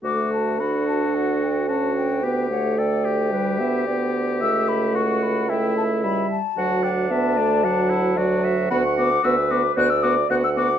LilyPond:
<<
  \new Staff \with { instrumentName = "Flute" } { \time 4/4 \key d \major \tempo 4 = 111 d'''8 a''8 b''8 a''8 fis''8 g''8 a''8 g''8~ | g''8 fis''8 g''2~ g''8 r8 | e'''8 b''8 cis'''8 b''8 g''8 a''8 b''8 a''8~ | a''8 g''8 a''2~ a''8 r8 |
\key b \dorian b''16 cis'''16 d'''8 e'''8 d'''8 fis'''16 e'''16 d'''8 fis'''16 e'''16 d'''8 | }
  \new Staff \with { instrumentName = "Clarinet" } { \time 4/4 \key d \major a'1 | b'8 cis''8 d''4 b'8 e''8 d''4 | e''4 fis''4 e''4 e''8 r8 | fis''4 e''8 d''8 fis''4 d''8 e''8 |
\key b \dorian fis''4 b'4 d''4 fis''4 | }
  \new Staff \with { instrumentName = "Oboe" } { \time 4/4 \key d \major fis'4 fis'2 fis'4 | g'4 a'8 g'2~ g'8~ | g'4 fis'4 e'4. r8 | fis'8 d'4. d'8 e'8 fis'4 |
\key b \dorian fis'8 fis'8 fis'8 fis'8 fis'8 fis'8 fis'8 fis'8 | }
  \new Staff \with { instrumentName = "French horn" } { \time 4/4 \key d \major a4 d'2 cis'4 | b8 a4. g8 b8 b4 | a2 a4 g8 r8 | fis4 b8 a8 fis4 fis4 |
\key b \dorian b8 b8 b8 b8 b8 b8 b8 b8 | }
  \new Staff \with { instrumentName = "Bassoon" } { \clef bass \time 4/4 \key d \major d,1~ | d,1 | cis,2.~ cis,8 r8 | d,1 |
\key b \dorian d,4 d,4 d,4 d,4 | }
>>